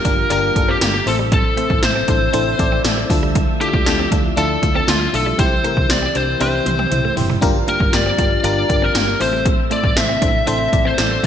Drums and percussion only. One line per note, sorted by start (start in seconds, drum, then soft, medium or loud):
0.05 kick medium
0.05 closed hi-hat medium
0.30 closed hi-hat medium
0.56 kick medium
0.56 closed hi-hat medium
0.81 snare loud
0.81 closed hi-hat loud
0.81 tambourine medium
1.07 open hi-hat medium
1.32 kick loud
1.32 closed hi-hat medium
1.57 closed hi-hat medium
1.70 kick medium
1.83 snare loud
1.83 closed hi-hat medium
1.83 tambourine medium
2.08 kick medium
2.08 closed hi-hat medium
2.33 closed hi-hat medium
2.59 kick medium
2.59 closed hi-hat medium
2.84 snare medium
2.84 closed hi-hat loud
2.84 tambourine medium
3.10 kick loud
3.10 open hi-hat medium
3.35 kick loud
3.35 closed hi-hat medium
3.61 closed hi-hat medium
3.74 kick medium
3.86 snare loud
3.86 closed hi-hat loud
3.86 tambourine medium
4.12 kick loud
4.12 closed hi-hat medium
4.37 closed hi-hat medium
4.63 kick medium
4.63 closed hi-hat medium
4.88 snare loud
4.88 closed hi-hat loud
4.88 tambourine medium
5.14 open hi-hat medium
5.39 kick loud
5.39 closed hi-hat medium
5.64 closed hi-hat medium
5.77 kick medium
5.90 snare loud
5.90 closed hi-hat medium
5.90 tambourine medium
6.15 closed hi-hat medium
6.41 closed hi-hat medium
6.41 high tom medium
6.66 closed hi-hat medium
6.66 mid tom medium
6.79 mid tom medium
6.92 closed hi-hat loud
6.92 mid tom medium
7.17 floor tom loud
7.17 open hi-hat medium
7.29 floor tom medium
7.42 kick loud
7.42 closed hi-hat medium
7.68 closed hi-hat medium
7.80 kick loud
7.93 snare loud
7.93 closed hi-hat loud
7.93 tambourine medium
8.18 kick medium
8.18 closed hi-hat medium
8.44 closed hi-hat medium
8.69 kick medium
8.69 closed hi-hat medium
8.95 snare loud
8.95 closed hi-hat medium
8.95 tambourine medium
9.21 open hi-hat medium
9.46 kick loud
9.46 closed hi-hat medium
9.71 closed hi-hat medium
9.84 kick medium
9.97 snare loud
9.97 closed hi-hat medium
9.97 tambourine medium
10.22 kick loud
10.22 closed hi-hat medium
10.47 closed hi-hat medium
10.73 kick medium
10.73 closed hi-hat medium
10.98 snare loud
10.98 closed hi-hat loud
10.98 tambourine medium
11.24 kick loud